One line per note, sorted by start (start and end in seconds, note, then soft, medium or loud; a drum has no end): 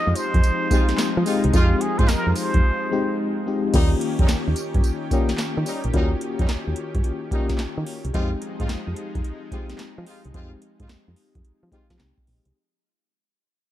0.00 3.70 F3 medium
0.00 0.71 G#3 medium
0.00 3.70 G#3 medium
0.00 0.72 C4 medium
0.00 0.72 D#4 medium
0.00 3.70 D#4 medium
0.00 0.72 G4 medium
0.00 0.17 D#5 loud
0.07 0.14 F2 medium
0.15 1.26 C5 loud
0.15 closed hi-hat medium
0.15 tambourine medium
0.34 0.41 F2 medium
0.34 kick loud
0.34 closed hi-hat soft
0.43 closed hi-hat medium
0.43 tambourine medium
0.71 1.10 G#3 medium
0.71 0.87 G#3 medium
0.71 1.10 C4 medium
0.71 0.87 D#4 medium
0.71 1.10 D#4 medium
0.71 0.87 F4 medium
0.71 1.10 G4 medium
0.71 kick medium
0.71 closed hi-hat medium
0.71 tambourine medium
0.89 snare medium
0.89 closed hi-hat medium
0.98 snare loud
0.98 clap loud
0.98 closed hi-hat medium
0.98 tambourine loud
1.17 1.24 F3 loud
1.26 1.42 G#3 medium
1.26 1.47 G#3 medium
1.26 1.47 C4 medium
1.26 1.42 D#4 medium
1.26 1.48 D#4 medium
1.26 1.42 F4 medium
1.26 1.48 G4 medium
1.26 open hi-hat medium
1.26 tambourine medium
1.44 1.51 C2 loud
1.44 closed hi-hat medium
1.53 1.73 F2 loud
1.53 1.69 G#3 medium
1.53 2.29 G#3 medium
1.53 2.29 C4 medium
1.53 1.70 D#4 medium
1.53 2.29 D#4 medium
1.53 1.70 F4 loud
1.53 1.83 F4 loud
1.53 1.63 F4 medium
1.53 kick loud
1.53 closed hi-hat medium
1.53 tambourine medium
1.61 2.33 G4 medium
1.81 2.00 G#4 loud
1.81 closed hi-hat medium
1.99 2.06 G#2 loud
1.99 2.08 G#3 medium
1.99 2.08 D#4 medium
1.99 2.08 F4 medium
1.99 2.10 C5 loud
1.99 kick loud
1.99 closed hi-hat medium
2.08 2.37 A#4 loud
2.08 snare loud
2.08 clap loud
2.08 closed hi-hat medium
2.08 tambourine medium
2.27 2.33 F2 medium
2.35 3.18 C5 loud
2.35 open hi-hat medium
2.35 tambourine medium
2.54 2.61 F2 medium
2.54 kick loud
2.54 closed hi-hat soft
2.92 3.30 G#3 medium
2.92 3.30 C4 medium
2.92 3.31 D#4 medium
2.92 3.31 G4 medium
3.46 3.67 G#3 medium
3.46 3.68 C4 medium
3.46 3.68 D#4 medium
3.46 3.68 G4 medium
3.73 3.93 D#2 loud
3.73 8.10 D#3 medium
3.73 3.90 G3 loud
3.73 4.49 A#3 medium
3.73 8.10 C#4 medium
3.73 3.90 C#4 medium
3.73 4.49 C#4 medium
3.73 3.90 D#4 loud
3.73 4.50 F4 medium
3.73 8.10 G4 medium
3.73 4.50 G4 loud
3.73 kick loud
3.73 closed hi-hat medium
3.73 crash loud
3.73 tambourine medium
4.01 closed hi-hat medium
4.19 4.26 F2 medium
4.19 4.28 G3 medium
4.19 4.28 C#4 medium
4.19 4.28 D#4 medium
4.19 kick loud
4.19 closed hi-hat medium
4.28 snare loud
4.28 clap medium
4.28 closed hi-hat medium
4.28 tambourine medium
4.48 4.54 D#2 loud
4.56 closed hi-hat medium
4.56 tambourine medium
4.74 4.81 G2 medium
4.74 kick loud
4.74 closed hi-hat soft
4.84 closed hi-hat medium
4.84 tambourine medium
5.11 5.27 G3 medium
5.11 5.66 A#3 medium
5.11 5.27 C#4 medium
5.11 5.66 C#4 medium
5.11 5.27 D#4 medium
5.11 5.66 F4 medium
5.11 5.67 G4 loud
5.11 kick medium
5.11 closed hi-hat medium
5.11 tambourine medium
5.29 snare medium
5.29 closed hi-hat medium
5.38 snare loud
5.38 clap loud
5.38 closed hi-hat medium
5.38 tambourine loud
5.57 5.64 D#3 loud
5.66 5.82 G3 medium
5.66 5.82 C#4 medium
5.66 5.82 D#4 medium
5.66 open hi-hat medium
5.66 tambourine medium
5.84 5.91 A#1 medium
5.84 closed hi-hat medium
5.94 6.13 D#2 loud
5.94 6.10 G3 loud
5.94 6.69 A#3 medium
5.94 6.10 C#4 medium
5.94 6.69 C#4 medium
5.94 6.10 D#4 loud
5.94 6.69 F4 medium
5.94 6.03 F#4 medium
5.94 kick loud
5.94 closed hi-hat medium
6.01 6.73 G4 loud
6.21 closed hi-hat medium
6.39 6.46 F2 medium
6.39 6.48 G3 medium
6.39 6.48 C#4 medium
6.39 6.48 D#4 medium
6.39 kick medium
6.39 closed hi-hat medium
6.48 snare loud
6.48 clap medium
6.48 closed hi-hat medium
6.68 6.74 D#2 medium
6.76 closed hi-hat medium
6.95 7.02 G2 medium
6.95 kick loud
6.95 closed hi-hat soft
7.04 closed hi-hat medium
7.31 7.47 G3 medium
7.31 7.86 A#3 medium
7.31 7.47 C#4 medium
7.31 7.86 C#4 medium
7.31 7.48 D#4 medium
7.31 7.86 F4 medium
7.31 7.86 G4 loud
7.31 kick loud
7.31 closed hi-hat medium
7.49 kick medium
7.49 snare medium
7.49 closed hi-hat medium
7.58 snare loud
7.58 clap medium
7.58 closed hi-hat medium
7.78 7.84 D#3 loud
7.86 open hi-hat medium
8.05 8.11 C2 medium
8.05 closed hi-hat medium
8.14 8.34 F2 loud
8.14 12.50 F3 medium
8.14 8.30 G#3 loud
8.14 12.50 G#3 medium
8.14 8.90 G#3 loud
8.14 8.90 C4 medium
8.14 12.50 D#4 medium
8.14 8.30 D#4 medium
8.14 8.90 D#4 medium
8.14 8.30 F4 loud
8.14 8.90 G4 loud
8.14 kick loud
8.14 closed hi-hat medium
8.42 closed hi-hat medium
8.60 8.67 G#2 medium
8.60 8.68 G#3 medium
8.60 8.68 D#4 medium
8.60 8.68 F4 medium
8.60 kick medium
8.60 closed hi-hat medium
8.69 8.77 F2 medium
8.69 snare loud
8.69 clap medium
8.69 closed hi-hat medium
8.87 8.94 F2 medium
8.96 closed hi-hat medium
9.15 9.22 F2 medium
9.15 kick loud
9.15 closed hi-hat soft
9.24 closed hi-hat medium
9.52 9.67 G#3 medium
9.52 10.06 G#3 loud
9.52 10.06 C4 medium
9.52 9.68 D#4 medium
9.52 10.07 D#4 medium
9.52 9.68 F4 medium
9.52 10.07 G4 loud
9.52 kick medium
9.52 closed hi-hat medium
9.69 snare medium
9.69 closed hi-hat medium
9.79 snare loud
9.79 clap loud
9.79 closed hi-hat medium
9.98 10.05 F3 loud
10.06 10.22 G#3 medium
10.06 10.23 D#4 medium
10.06 10.23 F4 medium
10.06 open hi-hat medium
10.25 10.32 C2 loud
10.25 closed hi-hat medium
10.34 10.54 F2 loud
10.34 10.50 G#3 loud
10.34 11.10 G#3 medium
10.34 11.10 C4 medium
10.34 10.50 D#4 medium
10.34 11.10 D#4 medium
10.34 10.50 F4 loud
10.34 11.10 G4 loud
10.34 kick loud
10.34 closed hi-hat medium
10.62 closed hi-hat medium
10.80 10.87 G#2 loud
10.80 10.88 G#3 medium
10.80 10.88 D#4 medium
10.80 10.88 F4 medium
10.80 kick medium
10.80 closed hi-hat medium
10.89 10.97 F2 soft
10.89 snare loud
10.89 clap medium
10.89 closed hi-hat medium
11.08 11.14 F2 loud
11.16 open hi-hat medium
11.35 11.42 F2 medium
11.35 kick loud
11.35 closed hi-hat soft
11.45 closed hi-hat medium
11.63 11.69 F3 loud
11.72 11.88 G#3 medium
11.72 12.26 G#3 medium
11.72 12.27 C4 medium
11.72 11.88 D#4 medium
11.72 12.27 D#4 medium
11.72 11.88 F4 medium
11.72 12.27 G4 loud
11.72 kick medium
11.72 closed hi-hat medium
11.90 11.97 F3 loud
11.90 kick medium
11.90 snare medium
11.90 closed hi-hat medium
11.99 12.13 C2 medium
11.99 snare loud
11.99 clap loud
11.99 closed hi-hat medium
12.18 kick loud
12.27 12.40 A#1 medium
12.27 open hi-hat medium
12.45 12.52 C2 medium
12.45 closed hi-hat medium